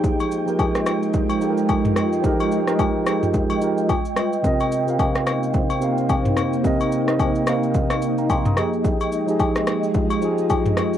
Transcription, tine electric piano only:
Already playing: F3 D#4 G4 G#4
0.46 F3 D#4 G4 A#4
1.40 F3 D#4 G4 A4
1.50 A#4
2.22 F3 D#4 G4 A#4
2.66 F3 D#4 G4 A#4
3.05 F3 D#4 G4 G#4
3.60 F3 D#4 G4 A#4
4.15 G3 F4 B4 D#5
4.42 C3 C4 A#4 D#5
4.86 C3 C4 A#4 F5
5.80 C3 C4 A#4 F5
6.63 C3 C4 A#4 D#5
7.06 C3 C4 A#4 D#5
7.45 C3 C4 A#4 F5
8.18 F5 A#5
8.30 G5 C6
8.46 A#5 D#6
8.55 F3 D#4 G4 G#4
9.26 F3 D#4 G4 G#4
10.21 F3 D#4 G4 G#4

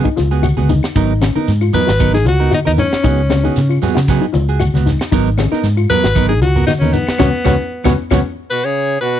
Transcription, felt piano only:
0.04 D#4
0.16 F4
0.43 F#4
0.69 D#4
0.95 D#4
1.22 C#4
1.36 D#4
1.61 F4
1.87 F#4
2.13 D#4
2.25 F4
2.51 F#4
2.78 D#4
3.03 D#4
3.29 C#4
3.43 D#4
3.69 F4
3.95 F#4
4.21 D#4
4.33 F4
4.60 F#4
4.86 D#4
5.11 D#4
5.38 C#4
5.52 D#4
5.77 F4
6.03 F#4
6.30 D#4
6.41 F4
6.67 F#4
6.94 D#4
7.19 B3 C#4 F#4
7.45 B3 C#4 F#4
7.85 B3 C#4 F#4
8.11 B3 C#4 F#4

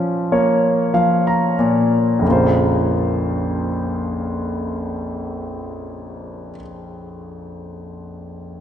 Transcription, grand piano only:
Already playing: A#2 F3 C#4
0.32 A#3 C#5
0.94 F3 F5
1.27 A#5
1.59 A#2
2.19 A#1 F2
2.25 C#3 A#3
2.30 F4 C5

